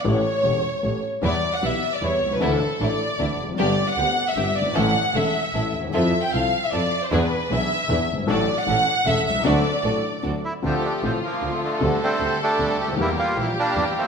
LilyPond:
<<
  \new Staff \with { instrumentName = "Violin section" } { \time 3/4 \key d \major \tempo 4 = 154 cis''2~ cis''8 r8 | d''8. fis''16 e''8. d''16 cis''8. b'16 | a'4 d''4. r8 | d''8. fis''4 e''8. d''8 |
fis''4 e''4. r8 | e''8. g''16 f''8. e''16 d''8. c''16 | b'4 e''4. r8 | d''8. fis''4~ fis''16 e''8 e''8 |
d''2 r4 | \key d \minor g'4 f'2 | a'2. | g'4 g'2 | }
  \new Staff \with { instrumentName = "String section" } { \time 3/4 \key d \major r2. | <g b e'>8 r8 <g b e'>8 r8 <g b e'>8 r8 | <a d' e'>8 r8 <a d' e'>8 r8 <a d' e'>8 r8 | <b d' g'>8 r8 <b d' g'>8 r8 <b d' g'>8 r8 |
<cis' e' a'>8 r8 <cis' e' a'>8 r8 <cis' e' a'>8 r8 | <e' f' a'>8 r8 <e' f' a'>8 r8 <e' f' a'>8 r8 | <d' e' gis'>8 r8 <d' e' gis'>8 r8 <d' e' gis'>8 r8 | <d' fis' a'>8 r8 <cis' e' a'>8 r8 <cis' e' a'>8 r8 |
<d' fis' a'>8 r8 <d' fis' a'>8 r8 <d' fis' a'>8 r8 | \key d \minor r2. | r2. | r2. | }
  \new Staff \with { instrumentName = "Bandoneon" } { \time 3/4 \key d \major r2. | r2. | r2. | r2. |
r2. | r2. | r2. | r2. |
r2 r8 e'8 | \key d \minor c'8 d'8 c'8 bes8. a16 a8~ | a8 c'4 d'4 g'8 | e'8 f'8 e'8 d'8. c'16 c'8 | }
  \new Staff \with { instrumentName = "Bandoneon" } { \clef bass \time 3/4 \key d \major r2. | r2. | r2. | r2. |
r2. | r2. | r2. | r2. |
r2. | \key d \minor <f a>4. f4 d8~ | d8 <g a>4 <g a>4. | <g bes>4. <g bes>4 <f a>8 | }
  \new Staff \with { instrumentName = "Upright piano" } { \clef bass \time 3/4 \key d \major <a,, a, e a cis' g'>8 r8 <e,, e, e a cis' g'>8 r8 <a,, a, e a cis' g'>8 r8 | <e, e g b g'>8 r8 <b,, b, e g b g'>8 r8 <e, e g b g'>8 r32 b,,32 c,32 cis,32 | <d, d e a d' a'>8 r8 <a,, a, e a d' a'>8 r8 <d, d e a d' a'>8 r32 e,32 f,32 fis,32 | <g,, g, d g b g'>8 r8 <d, d g b g'>8 r8 <g,, g, d g b g'>8 r32 fis,,32 g,,32 gis,,32 |
<a,, a, e a cis' a'>8 r8 <e,, e, e a cis' a'>8 r8 <a,, a, e a cis' a'>8 r32 d,32 ees,32 e,32 | <f, f c' e' a'>8 r8 <c, c f c' e' a'>8 r8 <f, f c' e' a'>8 r8 | <e, e b d' gis'>8 r8 <b,, b, e b d' gis'>8 r8 <e, e b d' gis'>8 r32 fis,,32 g,,32 gis,,32 | <a,, a, fis a d' a'>8 r8 <a,, a, e a cis' a'>8 r8 <e,, e, e a cis' a'>8 r32 b,,32 c,32 cis,32 |
<d, d fis a d' a'>8 r8 <a,, a, fis a d' a'>8 r8 <d, d fis a d' a'>8 r8 | \key d \minor <d, d a c' f'>8 r8 <a,, a, d a c' f'>8 r8 <d, d a c' f'>8 r8 | <d, d g a g'>8 r8 <d, d g a g'>8 r8 <d, d g a g'>8 r32 cis,32 d,32 ees,32 | <e, e g bes g'>8 r8 <bes,, bes, e g bes g'>8 r8 <e, e g bes g'>8 r8 | }
  \new Staff \with { instrumentName = "Double bass" } { \clef bass \time 3/4 \key d \major a,,8 r8 e,,8 r8 a,,8 r8 | e,8 r8 b,,8 r8 e,8 c,8 | d,8 r8 a,,8 r8 d,8 f,,8 | g,,8 r8 d,8 r8 g,,8 g,,8 |
a,,8 r8 e,,8 r8 a,,8 ees,8 | f,8 r8 c,8 r8 f,8 r8 | e,8 r8 b,,8 r8 e,8 g,,8 | a,,8 r8 a,,8 r8 e,,8 c,8 |
d,8 r8 a,,8 r8 d,8 r8 | \key d \minor d,8 r8 a,,8 r8 d,8 r8 | d,8 r8 d,8 r8 d,8 d,8 | e,8 r8 bes,,8 r8 e,8 r8 | }
>>